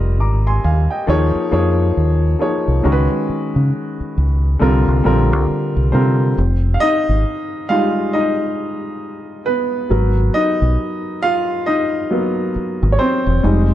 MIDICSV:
0, 0, Header, 1, 4, 480
1, 0, Start_track
1, 0, Tempo, 882353
1, 1539, Time_signature, 4, 2, 24, 8
1, 7475, End_track
2, 0, Start_track
2, 0, Title_t, "Grand piano"
2, 0, Program_c, 0, 0
2, 0, Control_c, 0, 64, 127
2, 0, Note_on_c, 0, 55, 75
2, 0, Note_on_c, 0, 60, 63
2, 0, Note_on_c, 0, 65, 67
2, 0, Note_on_c, 0, 70, 68
2, 0, Note_on_c, 0, 74, 57
2, 0, Note_on_c, 0, 75, 80
2, 110, Note_on_c, 0, 86, 55
2, 112, Note_on_c, 0, 82, 51
2, 242, Note_off_c, 0, 86, 0
2, 243, Note_off_c, 0, 82, 0
2, 255, Note_on_c, 0, 84, 69
2, 257, Note_on_c, 0, 80, 61
2, 340, Note_off_c, 0, 84, 0
2, 341, Note_off_c, 0, 80, 0
2, 350, Note_on_c, 0, 80, 65
2, 353, Note_on_c, 0, 77, 50
2, 387, Note_off_c, 0, 55, 0
2, 389, Note_off_c, 0, 60, 0
2, 391, Note_off_c, 0, 65, 0
2, 393, Note_off_c, 0, 70, 0
2, 482, Note_off_c, 0, 80, 0
2, 484, Note_off_c, 0, 77, 0
2, 492, Note_on_c, 0, 79, 58
2, 497, Note_off_c, 0, 75, 0
2, 497, Note_on_c, 0, 75, 47
2, 583, Note_on_c, 0, 53, 79
2, 586, Control_c, 0, 64, 0
2, 586, Note_on_c, 0, 58, 70
2, 589, Note_on_c, 0, 63, 74
2, 590, Note_off_c, 0, 74, 0
2, 594, Note_on_c, 0, 68, 64
2, 596, Note_on_c, 0, 73, 90
2, 685, Control_c, 0, 64, 127
2, 716, Note_off_c, 0, 79, 0
2, 719, Note_off_c, 0, 75, 0
2, 783, Note_off_c, 0, 53, 0
2, 785, Note_off_c, 0, 58, 0
2, 786, Note_off_c, 0, 63, 0
2, 788, Note_off_c, 0, 68, 0
2, 790, Note_off_c, 0, 73, 0
2, 821, Note_on_c, 0, 53, 70
2, 824, Note_on_c, 0, 58, 70
2, 828, Note_on_c, 0, 63, 73
2, 832, Note_on_c, 0, 68, 72
2, 835, Note_on_c, 0, 73, 89
2, 1220, Note_off_c, 0, 53, 0
2, 1221, Note_off_c, 0, 58, 0
2, 1223, Note_off_c, 0, 63, 0
2, 1225, Note_off_c, 0, 68, 0
2, 1227, Note_off_c, 0, 73, 0
2, 1301, Note_on_c, 0, 53, 61
2, 1305, Note_on_c, 0, 58, 57
2, 1308, Note_on_c, 0, 63, 62
2, 1312, Note_on_c, 0, 68, 54
2, 1315, Note_on_c, 0, 73, 73
2, 1500, Note_off_c, 0, 53, 0
2, 1502, Note_off_c, 0, 58, 0
2, 1503, Note_off_c, 0, 63, 0
2, 1505, Note_off_c, 0, 68, 0
2, 1507, Note_off_c, 0, 73, 0
2, 1540, Note_on_c, 0, 51, 70
2, 1543, Note_on_c, 0, 56, 67
2, 1545, Control_c, 0, 64, 0
2, 1546, Note_on_c, 0, 61, 66
2, 1550, Note_on_c, 0, 66, 70
2, 1552, Note_on_c, 0, 70, 60
2, 1588, Note_off_c, 0, 70, 0
2, 1589, Note_on_c, 0, 71, 86
2, 1644, Control_c, 0, 64, 127
2, 2305, Note_off_c, 0, 51, 0
2, 2307, Note_off_c, 0, 56, 0
2, 2308, Note_off_c, 0, 61, 0
2, 2310, Note_off_c, 0, 66, 0
2, 2330, Note_off_c, 0, 71, 0
2, 2499, Note_on_c, 0, 50, 75
2, 2503, Note_on_c, 0, 55, 67
2, 2505, Control_c, 0, 64, 0
2, 2506, Note_on_c, 0, 60, 66
2, 2510, Note_on_c, 0, 65, 74
2, 2513, Note_on_c, 0, 70, 78
2, 2616, Control_c, 0, 64, 127
2, 2701, Note_off_c, 0, 50, 0
2, 2703, Note_off_c, 0, 55, 0
2, 2705, Note_off_c, 0, 60, 0
2, 2706, Note_off_c, 0, 65, 0
2, 2708, Note_off_c, 0, 70, 0
2, 2739, Note_on_c, 0, 50, 75
2, 2743, Note_on_c, 0, 55, 72
2, 2747, Note_on_c, 0, 60, 71
2, 2750, Note_on_c, 0, 65, 64
2, 2754, Note_on_c, 0, 70, 84
2, 3139, Note_off_c, 0, 50, 0
2, 3141, Note_off_c, 0, 55, 0
2, 3143, Note_off_c, 0, 60, 0
2, 3144, Note_off_c, 0, 65, 0
2, 3146, Note_off_c, 0, 70, 0
2, 3220, Note_on_c, 0, 50, 58
2, 3221, Note_on_c, 0, 72, 70
2, 3224, Note_on_c, 0, 55, 57
2, 3228, Note_on_c, 0, 60, 61
2, 3230, Note_on_c, 0, 65, 54
2, 3235, Note_on_c, 0, 70, 65
2, 3420, Note_off_c, 0, 50, 0
2, 3421, Note_off_c, 0, 55, 0
2, 3425, Note_off_c, 0, 65, 0
2, 3427, Note_off_c, 0, 70, 0
2, 3465, Control_c, 0, 64, 0
2, 3556, Control_c, 0, 64, 127
2, 3653, Note_off_c, 0, 60, 0
2, 3668, Note_on_c, 0, 77, 73
2, 3683, Note_off_c, 0, 72, 0
2, 3699, Note_off_c, 0, 77, 0
2, 3701, Note_on_c, 0, 75, 111
2, 3711, Note_on_c, 0, 63, 73
2, 4163, Note_off_c, 0, 63, 0
2, 4183, Note_on_c, 0, 77, 88
2, 4185, Note_on_c, 0, 55, 54
2, 4188, Note_on_c, 0, 56, 53
2, 4191, Note_on_c, 0, 63, 65
2, 4193, Note_on_c, 0, 65, 69
2, 4194, Note_off_c, 0, 75, 0
2, 4409, Note_off_c, 0, 65, 0
2, 4425, Note_off_c, 0, 63, 0
2, 4425, Note_on_c, 0, 75, 82
2, 4428, Note_off_c, 0, 77, 0
2, 4433, Note_on_c, 0, 63, 73
2, 4520, Note_off_c, 0, 55, 0
2, 4522, Note_off_c, 0, 56, 0
2, 5124, Note_off_c, 0, 63, 0
2, 5145, Note_on_c, 0, 71, 87
2, 5152, Note_on_c, 0, 59, 59
2, 5163, Note_off_c, 0, 75, 0
2, 5383, Note_off_c, 0, 59, 0
2, 5386, Note_on_c, 0, 54, 54
2, 5387, Control_c, 0, 64, 0
2, 5389, Note_on_c, 0, 70, 51
2, 5392, Note_on_c, 0, 59, 56
2, 5490, Control_c, 0, 64, 127
2, 5626, Note_on_c, 0, 75, 95
2, 5632, Note_on_c, 0, 63, 73
2, 5636, Note_off_c, 0, 71, 0
2, 6081, Note_off_c, 0, 54, 0
2, 6082, Note_off_c, 0, 70, 0
2, 6083, Note_off_c, 0, 59, 0
2, 6084, Note_off_c, 0, 63, 0
2, 6107, Note_on_c, 0, 77, 101
2, 6113, Note_on_c, 0, 65, 76
2, 6117, Note_off_c, 0, 75, 0
2, 6329, Note_off_c, 0, 65, 0
2, 6345, Note_on_c, 0, 75, 87
2, 6350, Note_off_c, 0, 77, 0
2, 6350, Note_on_c, 0, 63, 69
2, 6585, Note_on_c, 0, 54, 52
2, 6587, Note_on_c, 0, 58, 44
2, 6589, Note_on_c, 0, 59, 60
2, 6800, Note_off_c, 0, 54, 0
2, 6801, Note_off_c, 0, 58, 0
2, 6802, Note_off_c, 0, 59, 0
2, 7013, Note_off_c, 0, 63, 0
2, 7031, Note_on_c, 0, 73, 71
2, 7052, Note_off_c, 0, 75, 0
2, 7060, Note_off_c, 0, 73, 0
2, 7066, Note_on_c, 0, 72, 89
2, 7071, Note_on_c, 0, 60, 65
2, 7305, Note_on_c, 0, 55, 55
2, 7306, Control_c, 0, 64, 0
2, 7308, Note_on_c, 0, 56, 51
2, 7311, Note_on_c, 0, 63, 61
2, 7417, Control_c, 0, 64, 127
2, 7475, Note_off_c, 0, 55, 0
2, 7475, Note_off_c, 0, 56, 0
2, 7475, Note_off_c, 0, 60, 0
2, 7475, Note_off_c, 0, 63, 0
2, 7475, Note_off_c, 0, 72, 0
2, 7475, End_track
3, 0, Start_track
3, 0, Title_t, "Fingered electric bass"
3, 0, Program_c, 1, 33
3, 0, Note_on_c, 1, 29, 93
3, 111, Note_off_c, 1, 29, 0
3, 111, Note_on_c, 1, 32, 79
3, 316, Note_off_c, 1, 32, 0
3, 352, Note_on_c, 1, 39, 77
3, 473, Note_off_c, 1, 39, 0
3, 590, Note_on_c, 1, 39, 83
3, 712, Note_off_c, 1, 39, 0
3, 831, Note_on_c, 1, 41, 87
3, 1036, Note_off_c, 1, 41, 0
3, 1073, Note_on_c, 1, 39, 79
3, 1277, Note_off_c, 1, 39, 0
3, 1458, Note_on_c, 1, 36, 68
3, 1535, Note_off_c, 1, 36, 0
3, 1552, Note_on_c, 1, 37, 84
3, 1673, Note_off_c, 1, 37, 0
3, 1937, Note_on_c, 1, 49, 77
3, 2014, Note_off_c, 1, 49, 0
3, 2272, Note_on_c, 1, 37, 75
3, 2476, Note_off_c, 1, 37, 0
3, 2513, Note_on_c, 1, 36, 86
3, 2633, Note_off_c, 1, 36, 0
3, 2657, Note_on_c, 1, 36, 81
3, 2735, Note_off_c, 1, 36, 0
3, 2752, Note_on_c, 1, 34, 79
3, 2898, Note_off_c, 1, 34, 0
3, 2898, Note_on_c, 1, 36, 75
3, 2975, Note_off_c, 1, 36, 0
3, 3137, Note_on_c, 1, 36, 82
3, 3215, Note_off_c, 1, 36, 0
3, 3233, Note_on_c, 1, 48, 86
3, 3437, Note_off_c, 1, 48, 0
3, 3473, Note_on_c, 1, 29, 91
3, 3677, Note_off_c, 1, 29, 0
3, 3858, Note_on_c, 1, 32, 77
3, 3935, Note_off_c, 1, 32, 0
3, 5393, Note_on_c, 1, 32, 94
3, 5597, Note_off_c, 1, 32, 0
3, 5777, Note_on_c, 1, 35, 86
3, 5854, Note_off_c, 1, 35, 0
3, 6978, Note_on_c, 1, 32, 92
3, 7055, Note_off_c, 1, 32, 0
3, 7217, Note_on_c, 1, 28, 90
3, 7295, Note_off_c, 1, 28, 0
3, 7312, Note_on_c, 1, 29, 101
3, 7475, Note_off_c, 1, 29, 0
3, 7475, End_track
4, 0, Start_track
4, 0, Title_t, "Muted fingered electric bass strokes"
4, 737, Note_on_c, 9, 29, 43
4, 792, Note_off_c, 9, 29, 0
4, 1793, Note_on_c, 9, 29, 41
4, 1847, Note_off_c, 9, 29, 0
4, 2179, Note_on_c, 9, 29, 42
4, 2233, Note_off_c, 9, 29, 0
4, 2994, Note_on_c, 9, 29, 44
4, 3049, Note_off_c, 9, 29, 0
4, 6832, Note_on_c, 9, 29, 50
4, 6887, Note_off_c, 9, 29, 0
4, 7475, End_track
0, 0, End_of_file